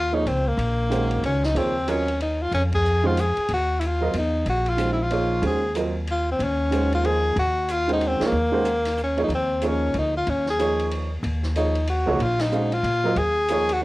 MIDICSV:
0, 0, Header, 1, 6, 480
1, 0, Start_track
1, 0, Tempo, 322581
1, 873, Time_signature, 3, 2, 24, 8
1, 20600, End_track
2, 0, Start_track
2, 0, Title_t, "Tenor saxophone"
2, 0, Program_c, 0, 66
2, 0, Note_on_c, 0, 65, 93
2, 211, Note_on_c, 0, 63, 86
2, 233, Note_off_c, 0, 65, 0
2, 404, Note_on_c, 0, 60, 77
2, 427, Note_off_c, 0, 63, 0
2, 705, Note_on_c, 0, 58, 86
2, 727, Note_off_c, 0, 60, 0
2, 1844, Note_off_c, 0, 58, 0
2, 1868, Note_on_c, 0, 61, 82
2, 2155, Note_on_c, 0, 63, 87
2, 2178, Note_off_c, 0, 61, 0
2, 2336, Note_on_c, 0, 60, 90
2, 2359, Note_off_c, 0, 63, 0
2, 2824, Note_on_c, 0, 61, 87
2, 2847, Note_off_c, 0, 60, 0
2, 3292, Note_off_c, 0, 61, 0
2, 3305, Note_on_c, 0, 63, 68
2, 3608, Note_on_c, 0, 65, 75
2, 3631, Note_off_c, 0, 63, 0
2, 3776, Note_off_c, 0, 65, 0
2, 3783, Note_on_c, 0, 61, 83
2, 3911, Note_off_c, 0, 61, 0
2, 4086, Note_on_c, 0, 68, 83
2, 4561, Note_on_c, 0, 65, 74
2, 4584, Note_off_c, 0, 68, 0
2, 4764, Note_on_c, 0, 68, 81
2, 4786, Note_off_c, 0, 65, 0
2, 5223, Note_off_c, 0, 68, 0
2, 5260, Note_on_c, 0, 66, 88
2, 5651, Note_on_c, 0, 64, 55
2, 5673, Note_off_c, 0, 66, 0
2, 5745, Note_on_c, 0, 65, 82
2, 5767, Note_off_c, 0, 64, 0
2, 6194, Note_off_c, 0, 65, 0
2, 6218, Note_on_c, 0, 63, 76
2, 6639, Note_off_c, 0, 63, 0
2, 6686, Note_on_c, 0, 66, 86
2, 6979, Note_on_c, 0, 65, 80
2, 7001, Note_off_c, 0, 66, 0
2, 7311, Note_off_c, 0, 65, 0
2, 7329, Note_on_c, 0, 64, 62
2, 7472, Note_on_c, 0, 65, 80
2, 7494, Note_off_c, 0, 64, 0
2, 8110, Note_off_c, 0, 65, 0
2, 8132, Note_on_c, 0, 68, 77
2, 8557, Note_off_c, 0, 68, 0
2, 9096, Note_on_c, 0, 65, 78
2, 9348, Note_off_c, 0, 65, 0
2, 9399, Note_on_c, 0, 60, 79
2, 9570, Note_on_c, 0, 61, 94
2, 9593, Note_off_c, 0, 60, 0
2, 10324, Note_off_c, 0, 61, 0
2, 10336, Note_on_c, 0, 65, 88
2, 10501, Note_on_c, 0, 68, 85
2, 10523, Note_off_c, 0, 65, 0
2, 10973, Note_off_c, 0, 68, 0
2, 10999, Note_on_c, 0, 66, 94
2, 11486, Note_on_c, 0, 65, 90
2, 11508, Note_off_c, 0, 66, 0
2, 11762, Note_off_c, 0, 65, 0
2, 11792, Note_on_c, 0, 63, 90
2, 12012, Note_on_c, 0, 60, 79
2, 12034, Note_off_c, 0, 63, 0
2, 12296, Note_on_c, 0, 58, 88
2, 12318, Note_off_c, 0, 60, 0
2, 13402, Note_off_c, 0, 58, 0
2, 13446, Note_on_c, 0, 61, 75
2, 13684, Note_off_c, 0, 61, 0
2, 13743, Note_on_c, 0, 63, 77
2, 13876, Note_off_c, 0, 63, 0
2, 13911, Note_on_c, 0, 60, 85
2, 14392, Note_on_c, 0, 61, 75
2, 14414, Note_off_c, 0, 60, 0
2, 14838, Note_off_c, 0, 61, 0
2, 14858, Note_on_c, 0, 63, 76
2, 15108, Note_off_c, 0, 63, 0
2, 15133, Note_on_c, 0, 65, 77
2, 15319, Note_on_c, 0, 61, 80
2, 15342, Note_off_c, 0, 65, 0
2, 15598, Note_off_c, 0, 61, 0
2, 15625, Note_on_c, 0, 68, 79
2, 16221, Note_off_c, 0, 68, 0
2, 17215, Note_on_c, 0, 63, 80
2, 17655, Note_off_c, 0, 63, 0
2, 17700, Note_on_c, 0, 66, 78
2, 18194, Note_on_c, 0, 65, 89
2, 18216, Note_off_c, 0, 66, 0
2, 18473, Note_on_c, 0, 63, 80
2, 18496, Note_off_c, 0, 65, 0
2, 18959, Note_on_c, 0, 65, 89
2, 18982, Note_off_c, 0, 63, 0
2, 19610, Note_on_c, 0, 68, 104
2, 19633, Note_off_c, 0, 65, 0
2, 20424, Note_on_c, 0, 66, 93
2, 20446, Note_off_c, 0, 68, 0
2, 20572, Note_off_c, 0, 66, 0
2, 20600, End_track
3, 0, Start_track
3, 0, Title_t, "Grand piano"
3, 0, Program_c, 1, 0
3, 185, Note_on_c, 1, 53, 56
3, 192, Note_on_c, 1, 58, 58
3, 199, Note_on_c, 1, 63, 55
3, 210, Note_on_c, 1, 73, 62
3, 211, Note_on_c, 1, 68, 48
3, 363, Note_off_c, 1, 53, 0
3, 366, Note_off_c, 1, 58, 0
3, 369, Note_off_c, 1, 63, 0
3, 375, Note_off_c, 1, 73, 0
3, 376, Note_off_c, 1, 68, 0
3, 1335, Note_on_c, 1, 51, 57
3, 1346, Note_on_c, 1, 56, 50
3, 1349, Note_on_c, 1, 61, 53
3, 1365, Note_on_c, 1, 66, 55
3, 1367, Note_on_c, 1, 72, 68
3, 2064, Note_off_c, 1, 51, 0
3, 2069, Note_off_c, 1, 56, 0
3, 2071, Note_off_c, 1, 61, 0
3, 2079, Note_off_c, 1, 66, 0
3, 2079, Note_off_c, 1, 72, 0
3, 2309, Note_on_c, 1, 53, 53
3, 2310, Note_on_c, 1, 58, 46
3, 2312, Note_on_c, 1, 63, 46
3, 2320, Note_on_c, 1, 68, 50
3, 2334, Note_on_c, 1, 73, 57
3, 2580, Note_off_c, 1, 53, 0
3, 2581, Note_off_c, 1, 58, 0
3, 2582, Note_off_c, 1, 63, 0
3, 2586, Note_off_c, 1, 68, 0
3, 2593, Note_off_c, 1, 73, 0
3, 2782, Note_on_c, 1, 54, 56
3, 2796, Note_on_c, 1, 60, 51
3, 2801, Note_on_c, 1, 65, 54
3, 2806, Note_on_c, 1, 70, 49
3, 2810, Note_on_c, 1, 75, 60
3, 3058, Note_off_c, 1, 54, 0
3, 3064, Note_off_c, 1, 60, 0
3, 3067, Note_off_c, 1, 65, 0
3, 3069, Note_off_c, 1, 70, 0
3, 3072, Note_off_c, 1, 75, 0
3, 4515, Note_on_c, 1, 51, 70
3, 4521, Note_on_c, 1, 56, 64
3, 4522, Note_on_c, 1, 61, 60
3, 4533, Note_on_c, 1, 66, 63
3, 4538, Note_on_c, 1, 72, 76
3, 4692, Note_off_c, 1, 51, 0
3, 4694, Note_off_c, 1, 56, 0
3, 4695, Note_off_c, 1, 61, 0
3, 4701, Note_off_c, 1, 66, 0
3, 4703, Note_off_c, 1, 72, 0
3, 5962, Note_on_c, 1, 60, 51
3, 5963, Note_on_c, 1, 54, 59
3, 5970, Note_on_c, 1, 65, 55
3, 5982, Note_on_c, 1, 70, 53
3, 5987, Note_on_c, 1, 75, 70
3, 6135, Note_off_c, 1, 60, 0
3, 6136, Note_off_c, 1, 54, 0
3, 6139, Note_off_c, 1, 65, 0
3, 6146, Note_off_c, 1, 70, 0
3, 6148, Note_off_c, 1, 75, 0
3, 7097, Note_on_c, 1, 51, 52
3, 7106, Note_on_c, 1, 56, 49
3, 7109, Note_on_c, 1, 61, 45
3, 7117, Note_on_c, 1, 66, 44
3, 7123, Note_on_c, 1, 72, 55
3, 7377, Note_off_c, 1, 51, 0
3, 7382, Note_off_c, 1, 56, 0
3, 7383, Note_off_c, 1, 61, 0
3, 7387, Note_off_c, 1, 66, 0
3, 7390, Note_off_c, 1, 72, 0
3, 7598, Note_on_c, 1, 53, 63
3, 7601, Note_on_c, 1, 58, 48
3, 7613, Note_on_c, 1, 63, 49
3, 7616, Note_on_c, 1, 68, 53
3, 7620, Note_on_c, 1, 73, 62
3, 8068, Note_on_c, 1, 51, 53
3, 8076, Note_on_c, 1, 56, 55
3, 8081, Note_off_c, 1, 53, 0
3, 8083, Note_off_c, 1, 58, 0
3, 8083, Note_on_c, 1, 61, 59
3, 8088, Note_off_c, 1, 63, 0
3, 8090, Note_off_c, 1, 68, 0
3, 8092, Note_off_c, 1, 73, 0
3, 8094, Note_on_c, 1, 66, 49
3, 8103, Note_on_c, 1, 72, 65
3, 8343, Note_off_c, 1, 51, 0
3, 8347, Note_off_c, 1, 56, 0
3, 8350, Note_off_c, 1, 61, 0
3, 8356, Note_off_c, 1, 66, 0
3, 8360, Note_off_c, 1, 72, 0
3, 8557, Note_on_c, 1, 54, 64
3, 8562, Note_on_c, 1, 60, 54
3, 8566, Note_on_c, 1, 65, 54
3, 8575, Note_on_c, 1, 70, 47
3, 8577, Note_on_c, 1, 75, 65
3, 8828, Note_off_c, 1, 54, 0
3, 8830, Note_off_c, 1, 60, 0
3, 8832, Note_off_c, 1, 65, 0
3, 8836, Note_off_c, 1, 70, 0
3, 8837, Note_off_c, 1, 75, 0
3, 9984, Note_on_c, 1, 51, 56
3, 9997, Note_on_c, 1, 56, 53
3, 9997, Note_on_c, 1, 61, 45
3, 10010, Note_on_c, 1, 66, 48
3, 10013, Note_on_c, 1, 72, 59
3, 10457, Note_off_c, 1, 51, 0
3, 10463, Note_off_c, 1, 56, 0
3, 10463, Note_off_c, 1, 61, 0
3, 10464, Note_off_c, 1, 72, 0
3, 10467, Note_on_c, 1, 53, 52
3, 10469, Note_off_c, 1, 66, 0
3, 10469, Note_on_c, 1, 58, 47
3, 10481, Note_on_c, 1, 63, 46
3, 10486, Note_on_c, 1, 68, 42
3, 10487, Note_on_c, 1, 72, 60
3, 10956, Note_off_c, 1, 53, 0
3, 10957, Note_off_c, 1, 58, 0
3, 10963, Note_off_c, 1, 63, 0
3, 10966, Note_off_c, 1, 68, 0
3, 10966, Note_off_c, 1, 72, 0
3, 11721, Note_on_c, 1, 51, 69
3, 11730, Note_on_c, 1, 56, 56
3, 11738, Note_on_c, 1, 61, 56
3, 11743, Note_on_c, 1, 66, 57
3, 11747, Note_on_c, 1, 72, 70
3, 12182, Note_off_c, 1, 51, 0
3, 12187, Note_off_c, 1, 56, 0
3, 12190, Note_off_c, 1, 61, 0
3, 12193, Note_off_c, 1, 66, 0
3, 12195, Note_off_c, 1, 72, 0
3, 12202, Note_on_c, 1, 53, 64
3, 12207, Note_on_c, 1, 58, 61
3, 12211, Note_on_c, 1, 63, 60
3, 12212, Note_on_c, 1, 68, 61
3, 12227, Note_on_c, 1, 73, 66
3, 12377, Note_off_c, 1, 53, 0
3, 12380, Note_off_c, 1, 58, 0
3, 12381, Note_off_c, 1, 63, 0
3, 12382, Note_off_c, 1, 68, 0
3, 12390, Note_off_c, 1, 73, 0
3, 12673, Note_on_c, 1, 51, 71
3, 12675, Note_on_c, 1, 56, 71
3, 12685, Note_on_c, 1, 61, 61
3, 12691, Note_on_c, 1, 66, 68
3, 12694, Note_on_c, 1, 72, 81
3, 12853, Note_off_c, 1, 51, 0
3, 12854, Note_off_c, 1, 56, 0
3, 12859, Note_off_c, 1, 61, 0
3, 12862, Note_off_c, 1, 66, 0
3, 12863, Note_off_c, 1, 72, 0
3, 13645, Note_on_c, 1, 58, 60
3, 13649, Note_on_c, 1, 53, 61
3, 13652, Note_on_c, 1, 63, 55
3, 13661, Note_on_c, 1, 68, 54
3, 13664, Note_on_c, 1, 73, 68
3, 13818, Note_off_c, 1, 58, 0
3, 13820, Note_off_c, 1, 53, 0
3, 13822, Note_off_c, 1, 63, 0
3, 13827, Note_off_c, 1, 68, 0
3, 13828, Note_off_c, 1, 73, 0
3, 14314, Note_on_c, 1, 53, 52
3, 14318, Note_on_c, 1, 58, 50
3, 14326, Note_on_c, 1, 63, 51
3, 14330, Note_on_c, 1, 68, 51
3, 14334, Note_on_c, 1, 73, 60
3, 15036, Note_off_c, 1, 53, 0
3, 15038, Note_off_c, 1, 58, 0
3, 15042, Note_off_c, 1, 63, 0
3, 15044, Note_off_c, 1, 68, 0
3, 15046, Note_off_c, 1, 73, 0
3, 15752, Note_on_c, 1, 53, 59
3, 15763, Note_on_c, 1, 58, 56
3, 15770, Note_on_c, 1, 63, 59
3, 15776, Note_on_c, 1, 68, 52
3, 15785, Note_on_c, 1, 73, 75
3, 16474, Note_off_c, 1, 53, 0
3, 16480, Note_off_c, 1, 58, 0
3, 16483, Note_off_c, 1, 63, 0
3, 16486, Note_off_c, 1, 68, 0
3, 16490, Note_off_c, 1, 73, 0
3, 17203, Note_on_c, 1, 53, 60
3, 17210, Note_on_c, 1, 58, 45
3, 17214, Note_on_c, 1, 63, 45
3, 17226, Note_on_c, 1, 68, 46
3, 17229, Note_on_c, 1, 73, 62
3, 17469, Note_off_c, 1, 53, 0
3, 17473, Note_off_c, 1, 58, 0
3, 17474, Note_off_c, 1, 63, 0
3, 17480, Note_off_c, 1, 68, 0
3, 17482, Note_off_c, 1, 73, 0
3, 17950, Note_on_c, 1, 53, 68
3, 17962, Note_on_c, 1, 58, 67
3, 17966, Note_on_c, 1, 63, 60
3, 17972, Note_on_c, 1, 68, 69
3, 17982, Note_on_c, 1, 73, 82
3, 18128, Note_off_c, 1, 53, 0
3, 18134, Note_off_c, 1, 58, 0
3, 18136, Note_off_c, 1, 63, 0
3, 18139, Note_off_c, 1, 68, 0
3, 18144, Note_off_c, 1, 73, 0
3, 18630, Note_on_c, 1, 56, 57
3, 18633, Note_on_c, 1, 61, 49
3, 18639, Note_on_c, 1, 66, 47
3, 18641, Note_on_c, 1, 72, 47
3, 18654, Note_on_c, 1, 77, 60
3, 18901, Note_off_c, 1, 56, 0
3, 18903, Note_off_c, 1, 61, 0
3, 18906, Note_off_c, 1, 66, 0
3, 18907, Note_off_c, 1, 72, 0
3, 18913, Note_off_c, 1, 77, 0
3, 19398, Note_on_c, 1, 54, 74
3, 19406, Note_on_c, 1, 60, 57
3, 19411, Note_on_c, 1, 65, 62
3, 19423, Note_on_c, 1, 70, 67
3, 19424, Note_on_c, 1, 75, 67
3, 19571, Note_off_c, 1, 54, 0
3, 19575, Note_off_c, 1, 60, 0
3, 19577, Note_off_c, 1, 65, 0
3, 19584, Note_off_c, 1, 70, 0
3, 19584, Note_off_c, 1, 75, 0
3, 20081, Note_on_c, 1, 53, 58
3, 20088, Note_on_c, 1, 58, 58
3, 20092, Note_on_c, 1, 63, 54
3, 20106, Note_on_c, 1, 68, 62
3, 20114, Note_on_c, 1, 73, 70
3, 20345, Note_off_c, 1, 53, 0
3, 20349, Note_off_c, 1, 58, 0
3, 20350, Note_off_c, 1, 63, 0
3, 20357, Note_off_c, 1, 68, 0
3, 20361, Note_off_c, 1, 73, 0
3, 20600, End_track
4, 0, Start_track
4, 0, Title_t, "Upright bass"
4, 0, Program_c, 2, 32
4, 0, Note_on_c, 2, 39, 82
4, 328, Note_off_c, 2, 39, 0
4, 384, Note_on_c, 2, 37, 67
4, 836, Note_off_c, 2, 37, 0
4, 853, Note_on_c, 2, 34, 86
4, 1766, Note_off_c, 2, 34, 0
4, 1827, Note_on_c, 2, 37, 76
4, 2279, Note_off_c, 2, 37, 0
4, 2300, Note_on_c, 2, 39, 76
4, 3692, Note_off_c, 2, 39, 0
4, 3742, Note_on_c, 2, 41, 77
4, 4950, Note_off_c, 2, 41, 0
4, 5189, Note_on_c, 2, 39, 72
4, 6097, Note_off_c, 2, 39, 0
4, 6158, Note_on_c, 2, 40, 68
4, 6607, Note_off_c, 2, 40, 0
4, 6636, Note_on_c, 2, 34, 79
4, 8021, Note_off_c, 2, 34, 0
4, 8065, Note_on_c, 2, 39, 81
4, 9456, Note_off_c, 2, 39, 0
4, 9512, Note_on_c, 2, 39, 87
4, 10899, Note_off_c, 2, 39, 0
4, 10952, Note_on_c, 2, 39, 85
4, 12156, Note_off_c, 2, 39, 0
4, 12374, Note_on_c, 2, 39, 79
4, 13770, Note_off_c, 2, 39, 0
4, 13815, Note_on_c, 2, 39, 84
4, 14730, Note_off_c, 2, 39, 0
4, 14790, Note_on_c, 2, 38, 70
4, 15243, Note_off_c, 2, 38, 0
4, 15280, Note_on_c, 2, 39, 78
4, 16661, Note_off_c, 2, 39, 0
4, 16705, Note_on_c, 2, 39, 78
4, 17909, Note_off_c, 2, 39, 0
4, 17961, Note_on_c, 2, 37, 65
4, 18130, Note_off_c, 2, 37, 0
4, 18139, Note_on_c, 2, 34, 81
4, 19048, Note_off_c, 2, 34, 0
4, 19093, Note_on_c, 2, 46, 73
4, 19550, Note_off_c, 2, 46, 0
4, 19581, Note_on_c, 2, 39, 80
4, 20600, Note_off_c, 2, 39, 0
4, 20600, End_track
5, 0, Start_track
5, 0, Title_t, "Muted upright bass strokes"
5, 5023, Note_on_c, 9, 29, 36
5, 5172, Note_off_c, 9, 29, 0
5, 12208, Note_on_c, 9, 29, 37
5, 12356, Note_off_c, 9, 29, 0
5, 20600, End_track
6, 0, Start_track
6, 0, Title_t, "Drums"
6, 395, Note_on_c, 9, 51, 58
6, 543, Note_off_c, 9, 51, 0
6, 871, Note_on_c, 9, 51, 55
6, 1020, Note_off_c, 9, 51, 0
6, 1361, Note_on_c, 9, 44, 53
6, 1361, Note_on_c, 9, 51, 53
6, 1510, Note_off_c, 9, 44, 0
6, 1510, Note_off_c, 9, 51, 0
6, 1645, Note_on_c, 9, 51, 41
6, 1794, Note_off_c, 9, 51, 0
6, 1837, Note_on_c, 9, 51, 53
6, 1986, Note_off_c, 9, 51, 0
6, 2134, Note_on_c, 9, 38, 47
6, 2283, Note_off_c, 9, 38, 0
6, 2320, Note_on_c, 9, 51, 60
6, 2469, Note_off_c, 9, 51, 0
6, 2791, Note_on_c, 9, 44, 45
6, 2791, Note_on_c, 9, 51, 60
6, 2940, Note_off_c, 9, 44, 0
6, 2940, Note_off_c, 9, 51, 0
6, 3096, Note_on_c, 9, 51, 40
6, 3245, Note_off_c, 9, 51, 0
6, 3279, Note_on_c, 9, 51, 54
6, 3428, Note_off_c, 9, 51, 0
6, 3752, Note_on_c, 9, 51, 48
6, 3901, Note_off_c, 9, 51, 0
6, 4053, Note_on_c, 9, 51, 72
6, 4055, Note_on_c, 9, 36, 79
6, 4201, Note_off_c, 9, 51, 0
6, 4203, Note_off_c, 9, 36, 0
6, 4239, Note_on_c, 9, 44, 39
6, 4388, Note_off_c, 9, 44, 0
6, 4718, Note_on_c, 9, 44, 54
6, 4718, Note_on_c, 9, 51, 58
6, 4867, Note_off_c, 9, 44, 0
6, 4867, Note_off_c, 9, 51, 0
6, 5009, Note_on_c, 9, 51, 40
6, 5158, Note_off_c, 9, 51, 0
6, 5185, Note_on_c, 9, 51, 56
6, 5334, Note_off_c, 9, 51, 0
6, 5665, Note_on_c, 9, 44, 46
6, 5665, Note_on_c, 9, 51, 61
6, 5813, Note_off_c, 9, 44, 0
6, 5813, Note_off_c, 9, 51, 0
6, 6150, Note_on_c, 9, 51, 64
6, 6299, Note_off_c, 9, 51, 0
6, 6631, Note_on_c, 9, 51, 54
6, 6780, Note_off_c, 9, 51, 0
6, 6930, Note_on_c, 9, 51, 42
6, 7079, Note_off_c, 9, 51, 0
6, 7112, Note_on_c, 9, 44, 52
6, 7112, Note_on_c, 9, 51, 57
6, 7260, Note_off_c, 9, 44, 0
6, 7260, Note_off_c, 9, 51, 0
6, 7593, Note_on_c, 9, 51, 52
6, 7742, Note_off_c, 9, 51, 0
6, 8071, Note_on_c, 9, 51, 59
6, 8220, Note_off_c, 9, 51, 0
6, 8554, Note_on_c, 9, 44, 56
6, 8554, Note_on_c, 9, 51, 57
6, 8703, Note_off_c, 9, 44, 0
6, 8703, Note_off_c, 9, 51, 0
6, 9037, Note_on_c, 9, 51, 51
6, 9186, Note_off_c, 9, 51, 0
6, 9523, Note_on_c, 9, 51, 58
6, 9672, Note_off_c, 9, 51, 0
6, 9999, Note_on_c, 9, 44, 53
6, 9999, Note_on_c, 9, 51, 54
6, 10148, Note_off_c, 9, 44, 0
6, 10148, Note_off_c, 9, 51, 0
6, 10303, Note_on_c, 9, 51, 40
6, 10452, Note_off_c, 9, 51, 0
6, 10482, Note_on_c, 9, 51, 50
6, 10631, Note_off_c, 9, 51, 0
6, 10957, Note_on_c, 9, 51, 52
6, 11106, Note_off_c, 9, 51, 0
6, 11434, Note_on_c, 9, 44, 48
6, 11434, Note_on_c, 9, 51, 59
6, 11582, Note_off_c, 9, 44, 0
6, 11582, Note_off_c, 9, 51, 0
6, 11739, Note_on_c, 9, 51, 40
6, 11887, Note_off_c, 9, 51, 0
6, 11916, Note_on_c, 9, 51, 52
6, 12065, Note_off_c, 9, 51, 0
6, 12215, Note_on_c, 9, 38, 72
6, 12215, Note_on_c, 9, 51, 56
6, 12364, Note_off_c, 9, 38, 0
6, 12364, Note_off_c, 9, 51, 0
6, 12869, Note_on_c, 9, 44, 49
6, 12869, Note_on_c, 9, 51, 55
6, 13018, Note_off_c, 9, 44, 0
6, 13018, Note_off_c, 9, 51, 0
6, 13170, Note_on_c, 9, 38, 30
6, 13170, Note_on_c, 9, 51, 59
6, 13319, Note_off_c, 9, 38, 0
6, 13319, Note_off_c, 9, 51, 0
6, 13348, Note_on_c, 9, 44, 57
6, 13497, Note_off_c, 9, 44, 0
6, 13650, Note_on_c, 9, 51, 36
6, 13799, Note_off_c, 9, 51, 0
6, 13835, Note_on_c, 9, 51, 52
6, 13984, Note_off_c, 9, 51, 0
6, 14305, Note_on_c, 9, 44, 44
6, 14305, Note_on_c, 9, 51, 51
6, 14454, Note_off_c, 9, 44, 0
6, 14454, Note_off_c, 9, 51, 0
6, 14787, Note_on_c, 9, 51, 50
6, 14936, Note_off_c, 9, 51, 0
6, 15275, Note_on_c, 9, 51, 52
6, 15424, Note_off_c, 9, 51, 0
6, 15569, Note_on_c, 9, 38, 36
6, 15718, Note_off_c, 9, 38, 0
6, 15762, Note_on_c, 9, 44, 44
6, 15762, Note_on_c, 9, 51, 59
6, 15911, Note_off_c, 9, 44, 0
6, 15911, Note_off_c, 9, 51, 0
6, 16060, Note_on_c, 9, 51, 42
6, 16209, Note_off_c, 9, 51, 0
6, 16237, Note_on_c, 9, 51, 59
6, 16386, Note_off_c, 9, 51, 0
6, 16719, Note_on_c, 9, 51, 60
6, 16868, Note_off_c, 9, 51, 0
6, 17008, Note_on_c, 9, 38, 35
6, 17157, Note_off_c, 9, 38, 0
6, 17194, Note_on_c, 9, 44, 44
6, 17194, Note_on_c, 9, 51, 58
6, 17343, Note_off_c, 9, 44, 0
6, 17343, Note_off_c, 9, 51, 0
6, 17488, Note_on_c, 9, 51, 44
6, 17637, Note_off_c, 9, 51, 0
6, 17670, Note_on_c, 9, 51, 62
6, 17818, Note_off_c, 9, 51, 0
6, 18156, Note_on_c, 9, 51, 55
6, 18305, Note_off_c, 9, 51, 0
6, 18444, Note_on_c, 9, 38, 71
6, 18444, Note_on_c, 9, 51, 61
6, 18593, Note_off_c, 9, 38, 0
6, 18593, Note_off_c, 9, 51, 0
6, 18628, Note_on_c, 9, 44, 44
6, 18776, Note_off_c, 9, 44, 0
6, 18927, Note_on_c, 9, 51, 39
6, 19076, Note_off_c, 9, 51, 0
6, 19107, Note_on_c, 9, 51, 56
6, 19256, Note_off_c, 9, 51, 0
6, 19584, Note_on_c, 9, 51, 50
6, 19732, Note_off_c, 9, 51, 0
6, 20063, Note_on_c, 9, 44, 51
6, 20063, Note_on_c, 9, 51, 57
6, 20212, Note_off_c, 9, 44, 0
6, 20212, Note_off_c, 9, 51, 0
6, 20368, Note_on_c, 9, 51, 68
6, 20517, Note_off_c, 9, 51, 0
6, 20600, End_track
0, 0, End_of_file